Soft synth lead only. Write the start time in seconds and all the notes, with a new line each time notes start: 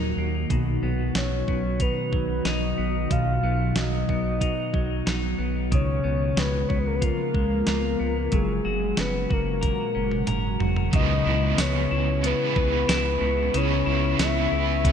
1.17 C#5
1.82 B4
2.47 D#5
3.12 F5
3.78 D#5
5.74 C#5
6.39 B4
6.68 C#5
6.79 B4
6.87 A#4
6.95 B4
7.04 A#4
8.35 G#4
9.00 B4
9.33 A#4
10.95 D#5
11.60 C#5
12.26 B4
13.57 C#5
14.22 E5